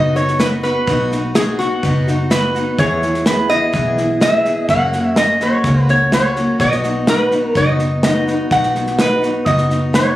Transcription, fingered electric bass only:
Already playing: F#1
0.88 B1
1.83 F#1
2.79 E2
3.73 B1
4.69 F#2
5.64 C#2
6.60 B1
7.55 F#1
8.51 B1
9.46 F#1

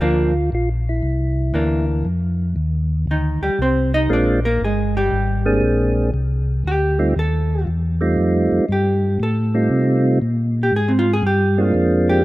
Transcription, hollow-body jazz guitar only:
0.01 F3 A#3 D4
1.54 E3 A#3 D4
3.11 D#3 D#4
3.43 G3 G4
3.62 C4 C5
3.94 D#4 D#5
4.13 D4 D5
4.45 A#3 A#4
4.64 G#3 G#4
4.97 G3 G4
6.67 G4
7.19 A4
8.72 G4
9.23 A4
10.63 G4
10.76 G#4
10.88 C4
10.99 F4
11.13 G#4
11.27 G4
12.09 G4

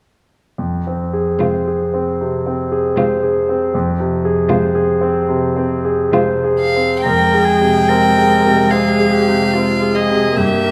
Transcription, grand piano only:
0.58 F2
0.87 C4
1.13 G#4
1.41 C5
1.67 G#4
1.94 C4
2.21 C3
2.46 C4
2.72 G#4
2.98 C5
3.23 G#4
3.49 C4
3.74 F2
4.00 C3
4.25 G#4
4.50 C5
4.75 G#4
5.01 C4
5.29 C3
5.57 C4
5.85 G#4
6.14 C5
6.44 G#4
6.76 C4
7.06 F2
7.34 G#4
7.61 C3
7.89 C4
8.18 G#4
8.45 C3
8.72 C4
9.00 G#4
9.28 C3
9.55 C4
9.82 G#4
10.10 C3
10.37 G2
10.64 A#4

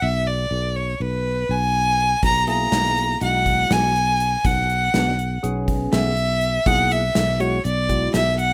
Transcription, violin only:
0.02 E5
0.27 D5
0.76 C#5
1.01 B4
1.50 G#5
2.25 A#5
2.49 A#5
3.22 F#5
3.72 G#5
4.45 F#5
5.93 E5
6.67 F#5
6.92 E5
7.40 C#5
7.65 D5
8.14 E5
8.39 F#5

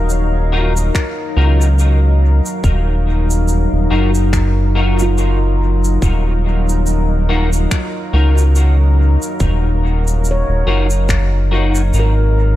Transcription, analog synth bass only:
Already playing: D#1
1.37 C#2
2.64 D#1
3.73 D#1
3.91 F#1
6.02 D#1
8.13 C#2
9.40 D#1
10.49 D#1
10.67 F#1
11.93 G#1

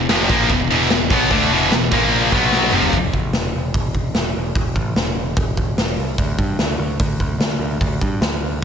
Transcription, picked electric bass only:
0.09 F1
0.29 A#1
0.50 E1
0.70 E1
0.91 E1
1.10 B1
1.31 D2
1.51 E1
1.71 E1
1.92 A#1
2.32 B1
2.72 F1
2.93 E1
3.13 A1
3.33 E1
3.54 E1
3.74 E1
3.95 E1
4.14 E1
4.35 E1
4.55 E1
4.76 A1
4.95 E1
5.15 E1
5.37 E1
5.57 E1
5.77 E1
5.97 C2
6.18 D2
6.38 G2
6.59 D2
6.79 D2
7.00 D2
7.20 D2
7.38 D2
7.59 D2
7.81 D2
8.02 G2
8.21 D2
8.40 D2

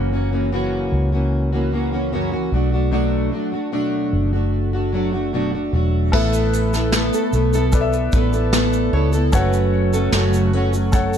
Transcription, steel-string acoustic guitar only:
Already playing: F#2 C#3 E3 A#3 C#4 F#4
0.12 E3 A#3 C#4 F#4
0.32 E3 A#3 C#4 F#4
0.52 F#2 C#3 E3 A#3 C#4 F#4
1.12 E3 A#3 C#4 F#4
1.52 E3 A#3 C#4 F#4
1.72 E3 A#3 C#4 F#4
1.92 E3 A#3 C#4 F#4
2.12 F#2 C#3 E3 A#3 C#4 F#4
2.32 E3 A#3 C#4 F#4
2.52 F#3 A3 D4 F#4
2.72 A3 D4 F#4
2.91 B2 F#3 A3 D4 F#4
3.32 F#3 A3 D4 F#4
3.52 A3 D4 F#4
3.72 B2 F#3 A3 D4 F#4
4.33 A3 D4 F#4
4.73 A3 D4 F#4
4.93 F#3 A3 D4 F#4
5.12 A3 D4 F#4
5.33 B2 F#3 A3 D4 F#4
5.53 A3 D4 F#4
5.73 F#3 A3 D4 F#4
6.14 A3 B3 E4 A4
6.74 B3 E4 A4
6.93 A3 B3 E4 A4
7.34 A3 B3 E4 A4
7.53 B3 E4 A4
8.14 A3 B3 E4 A4
8.34 B3 E4 A4
8.53 A3 B3 E4 A4
8.93 A3 B3 E4 A4
9.13 B3 E4 A4
9.33 F#2 C#3 F#3 A3 C#4 F#4
9.93 F#3 A3 C#4 F#4
10.13 F#2 C#3 F#3 A3 C#4 F#4
10.53 F#3 A3 C#4 F#4
10.73 F#3 A3 C#4 F#4

